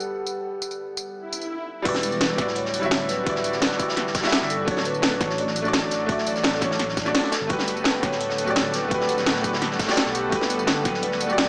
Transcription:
Already playing: analog synth pad G3 A4 B4 F#5, grand piano G3 B3 A4 F#5, vibraphone G4
0.00 tambourine
0.26 tambourine
0.62 tambourine
0.71 tambourine
0.97 tambourine
1.15 swell
1.33 tambourine
1.41 tambourine
1.82 detuned saw bass E1, analog synth pad E3 G3 D4 F#4, grand piano G3 E4, vibraphone B4, kick, closed hi-hat, crash
1.86 grand piano F#4 D5
1.95 snare
2.03 closed hi-hat, tambourine
2.12 tambourine
2.21 snare, closed hi-hat
2.35 detuned saw bass D1, grand piano G3 E4, kick, snare, closed hi-hat, tambourine
2.39 grand piano F#4 D5
2.47 snare
2.55 vibraphone C#5, closed hi-hat
2.65 snare
2.74 closed hi-hat, tambourine
2.80 detuned saw bass D1, grand piano G3 E4, tambourine
2.84 grand piano F#4 E5
2.91 snare, closed hi-hat
3.09 vibraphone B4, snare, closed hi-hat, tambourine
3.23 grand piano G3 E4, kick, closed hi-hat
3.28 grand piano F#4 D5
3.35 snare
3.44 closed hi-hat, tambourine
3.52 snare, tambourine
3.62 snare, closed hi-hat
3.71 snare
3.76 detuned saw bass D1, grand piano G3 E4, kick, closed hi-hat, tambourine
3.81 grand piano F#4 D5
3.89 snare
3.96 snare, closed hi-hat
4.07 snare
4.15 kick, snare, closed hi-hat, tambourine
4.21 grand piano G3 E4, snare, closed hi-hat, tambourine
4.25 grand piano F#4 E5, snare, closed hi-hat
4.32 snare, closed hi-hat
4.41 detuned saw bass G1, snare
4.50 vibraphone A4, closed hi-hat, tambourine
4.65 detuned saw bass D1, analog synth pad F#3 A4, grand piano A3 D4, kick, closed hi-hat
4.69 grand piano F#4 C#5
4.77 snare
4.85 vibraphone B4, closed hi-hat, tambourine
4.94 tambourine
5.02 snare, closed hi-hat
5.18 detuned saw bass A1, grand piano A3 D4, kick, snare, closed hi-hat, tambourine
5.22 grand piano F#4 C#5
5.30 vibraphone C#5, snare
5.38 vibraphone D5, closed hi-hat
5.47 snare
5.56 closed hi-hat, tambourine
5.62 detuned saw bass A1, grand piano A3 D4, tambourine
5.66 grand piano F#4 D5
5.73 snare, closed hi-hat
5.91 snare, closed hi-hat, tambourine
6.06 grand piano A3 D4, vibraphone E5, kick, closed hi-hat
6.10 grand piano F#4 D5
6.18 snare
6.27 vibraphone D5, closed hi-hat, tambourine
6.36 snare, tambourine
6.44 snare, closed hi-hat
6.53 snare
6.59 detuned saw bass A1, grand piano A3 D4, vibraphone C#5, kick, snare, closed hi-hat, tambourine
6.63 grand piano F#4 C#5
6.71 snare
6.79 snare, closed hi-hat
6.89 snare
6.97 detuned saw bass A1, kick, snare, closed hi-hat, tambourine
7.05 grand piano A3 D4 F#4 D5, snare, tambourine
7.15 snare, closed hi-hat
7.24 snare
7.32 analog synth pad G3 B3 F#5, vibraphone A4, snare, closed hi-hat, tambourine
7.41 detuned saw bass G1
7.47 detuned saw bass G1, grand piano A3 F#4, vibraphone B4, kick, closed hi-hat
7.51 grand piano G4 B4
7.59 snare
7.68 closed hi-hat, tambourine
7.77 tambourine
7.84 snare, closed hi-hat
8.00 detuned saw bass D1, grand piano A3 F#4, vibraphone C#5, kick, snare, closed hi-hat, tambourine
8.04 grand piano G4 B4
8.12 snare
8.21 closed hi-hat
8.30 snare
8.38 closed hi-hat, tambourine
8.44 detuned saw bass D1, grand piano A3 F#4, tambourine
8.48 grand piano G4 D5
8.56 snare, closed hi-hat
8.74 vibraphone B4, snare, closed hi-hat, tambourine
8.88 grand piano A3 F#4, kick, closed hi-hat
8.92 grand piano G4 B4
9.01 snare
9.09 closed hi-hat, tambourine
9.18 snare, tambourine
9.26 snare, closed hi-hat
9.36 snare
9.41 detuned saw bass D1, grand piano A3 F#4, kick, closed hi-hat, tambourine
9.45 grand piano G4 B4
9.53 snare
9.62 snare, closed hi-hat
9.71 snare
9.79 kick, snare, closed hi-hat, tambourine
9.85 grand piano A3 F#4, snare, closed hi-hat, tambourine
9.89 grand piano G4 D5, snare, closed hi-hat
9.97 snare, closed hi-hat
10.06 detuned saw bass B1, snare
10.15 vibraphone G4, closed hi-hat, tambourine
10.29 detuned saw bass G1, grand piano A3 F#4, vibraphone A4, kick, closed hi-hat
10.33 grand piano G4 B4
10.41 snare
10.50 closed hi-hat, tambourine
10.59 tambourine
10.67 snare, closed hi-hat
10.82 detuned saw bass D1, grand piano A3 F#4, kick, snare, closed hi-hat, tambourine
10.86 grand piano G4 B4
10.94 snare
11.02 vibraphone B4, closed hi-hat
11.12 snare
11.20 vibraphone D5, closed hi-hat, tambourine
11.26 detuned saw bass D1, grand piano A3 F#4, tambourine
11.31 grand piano G4 D5
11.38 snare, closed hi-hat

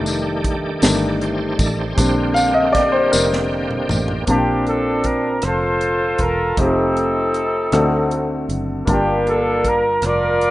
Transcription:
Already playing: fingered electric bass F1, grand piano D#3 G3 A3 D4, tonewheel organ D#3 A3 D4 G4
0.06 closed hi-hat, tambourine
0.44 kick, closed hi-hat
0.82 fingered electric bass G1, grand piano D#3 G3 A3 D4, snare, closed hi-hat, tambourine
1.21 tonewheel organ G4 C5, closed hi-hat
1.59 fingered electric bass A1, tonewheel organ A4 D5, kick, closed hi-hat, tambourine
1.79 tonewheel organ G4 C5
1.96 fingered electric bass A#1, tonewheel organ D3 A#3 C4 G4, grand piano G3 C4 D4, kick, closed hi-hat, tambourine
2.34 grand piano F5, closed hi-hat, tambourine
2.54 grand piano D#5
2.73 grand piano D5, kick, snare, closed hi-hat
2.92 grand piano C5
3.12 fingered electric bass F1, grand piano A#4, snare, tambourine
3.33 snare
3.71 mid tom
3.89 fingered electric bass A1, floor tom, tambourine
4.08 floor tom
4.26 fingered electric bass A#1, grand piano A#2 A#3 C4 D4 F4, horn section C4 D4 G4, kick, closed hi-hat
4.30 grand piano A5
4.67 horn section A4, closed hi-hat
5.04 horn section A#4, kick, closed hi-hat
5.42 fingered electric bass F1, horn section F4 C5, cross-stick, closed hi-hat
5.46 horn section A4
5.81 closed hi-hat
6.18 fingered electric bass E1, horn section A#4, kick, closed hi-hat
6.57 fingered electric bass F1, grand piano A3 C4 D#4 F4 G4, horn section C4 D#4 A4, kick, closed hi-hat
6.97 closed hi-hat
7.34 cross-stick, closed hi-hat
7.72 fingered electric bass D2, grand piano D3 A3 C4 F#4 A4 D5, cross-stick, closed hi-hat
8.11 closed hi-hat
8.49 fingered electric bass F#1, closed hi-hat
8.85 fingered electric bass G1, grand piano G2 A#3 D4 F4 G4 A5, kick, closed hi-hat
8.91 horn section A#3 D4 G4
9.27 horn section A4, closed hi-hat
9.65 horn section A#4, kick, closed hi-hat
10.02 fingered electric bass F1, horn section F4, cross-stick, closed hi-hat
10.06 horn section A#4 D5
10.41 closed hi-hat

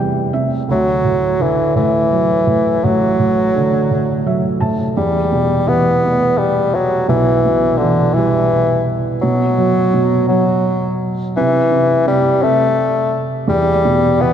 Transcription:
Already playing: felt piano E2 C3 E3 G3 G5
0.33 felt piano C3 E5
0.69 felt piano D2, bassoon F#3
1.04 felt piano A2
1.40 felt piano D3, bassoon E3
1.76 felt piano A2, bassoon E3
2.12 felt piano F#3
2.47 felt piano A2
2.84 felt piano A1, bassoon F#3
3.19 felt piano A2
3.56 felt piano D3
3.90 felt piano A2
4.26 felt piano F#3 E5
4.60 felt piano A2 A5
4.97 felt piano E2, bassoon G3
5.32 felt piano B2
5.67 felt piano E3, bassoon B3
6.03 felt piano B3
6.38 bassoon G3
6.74 bassoon F#3
7.08 felt piano B1, bassoon E3
7.46 felt piano B2
7.78 bassoon D3, felt piano E3
8.14 bassoon E3, felt piano G3
9.22 felt piano B2, bassoon F#3
9.58 felt piano F#3
9.94 felt piano B2
10.29 bassoon F#3, felt piano F#3
11.36 felt piano C3, bassoon E3
11.71 felt piano C3
12.06 felt piano C3, bassoon G3
12.43 felt piano C3, bassoon A3
13.48 felt piano E2, bassoon G3
13.85 felt piano B2
14.20 felt piano E3, bassoon B3

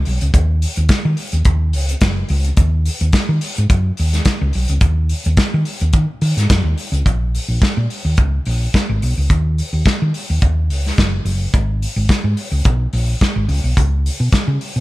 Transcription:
0.05 fingered electric bass B1, open hi-hat
0.21 fingered electric bass C#2, closed hi-hat
0.34 fingered electric bass D#2, kick, closed hi-hat
0.62 open hi-hat
0.76 fingered electric bass D#2, closed hi-hat
0.89 kick, snare, closed hi-hat
1.05 fingered electric bass D#3
1.17 open hi-hat
1.32 fingered electric bass D#2, closed hi-hat
1.45 fingered electric bass D#2, kick, closed hi-hat
1.73 fingered electric bass C#2, open hi-hat
1.89 closed hi-hat
2.01 fingered electric bass F#1, kick, snare, closed hi-hat
2.29 fingered electric bass C#2, open hi-hat
2.44 closed hi-hat
2.57 fingered electric bass D#2, kick, closed hi-hat
2.86 open hi-hat
3.00 fingered electric bass D#2, closed hi-hat
3.13 muted fingered electric bass stroke, kick, snare, closed hi-hat
3.29 fingered electric bass D#3
3.41 open hi-hat
3.56 fingered electric bass G#2, closed hi-hat
3.70 fingered electric bass F#2, kick, closed hi-hat
3.97 fingered electric bass D#2, open hi-hat
4.13 snare, closed hi-hat
4.25 kick, snare, closed hi-hat
4.42 fingered electric bass C#2
4.53 fingered electric bass B1, open hi-hat
4.68 fingered electric bass C#2, closed hi-hat
4.81 fingered electric bass D#2, kick, closed hi-hat
5.09 open hi-hat
5.24 fingered electric bass D#2, closed hi-hat
5.37 kick, snare, closed hi-hat
5.54 fingered electric bass D#3
5.65 open hi-hat
5.80 fingered electric bass D#2, closed hi-hat
5.93 fingered electric bass D#3, kick, closed hi-hat
6.21 fingered electric bass D#3, open hi-hat
6.37 fingered electric bass G#2, snare, closed hi-hat
6.50 fingered electric bass F#2, kick, snare, closed hi-hat
6.64 fingered electric bass D#2
6.78 open hi-hat
6.92 fingered electric bass C#2, closed hi-hat
7.06 fingered electric bass A#1, kick, closed hi-hat
7.35 open hi-hat
7.48 fingered electric bass A#1
7.62 kick, snare, closed hi-hat
7.77 fingered electric bass A#2
7.90 open hi-hat
8.05 fingered electric bass D#2
8.17 fingered electric bass C#2, kick, closed hi-hat
8.45 fingered electric bass A#1, open hi-hat
8.74 kick, snare, closed hi-hat
8.89 fingered electric bass G#1
9.02 fingered electric bass B1, open hi-hat
9.18 fingered electric bass C#2
9.30 fingered electric bass D#2, kick, closed hi-hat
9.58 open hi-hat
9.73 fingered electric bass D#2
9.85 kick, snare, closed hi-hat
10.02 fingered electric bass D#3
10.14 open hi-hat
10.30 fingered electric bass D#2
10.42 fingered electric bass D#2, kick, closed hi-hat
10.70 fingered electric bass C#2, open hi-hat
10.86 snare
10.98 fingered electric bass F#1, kick, snare, closed hi-hat
11.25 fingered electric bass F#1, open hi-hat
11.54 fingered electric bass G#1, kick, closed hi-hat
11.82 open hi-hat
11.96 fingered electric bass G#1
12.09 kick, snare, closed hi-hat
12.24 fingered electric bass G#2
12.37 open hi-hat
12.52 fingered electric bass C#2
12.65 fingered electric bass B1, kick, closed hi-hat
12.93 fingered electric bass A#1, open hi-hat
13.21 kick, snare, closed hi-hat
13.36 fingered electric bass G#1
13.48 fingered electric bass C#2, open hi-hat
13.64 fingered electric bass B1
13.77 fingered electric bass C#2, kick, closed hi-hat
14.06 open hi-hat
14.20 fingered electric bass B2
14.32 kick, snare, closed hi-hat
14.48 fingered electric bass C#3
14.61 open hi-hat
14.76 fingered electric bass B2

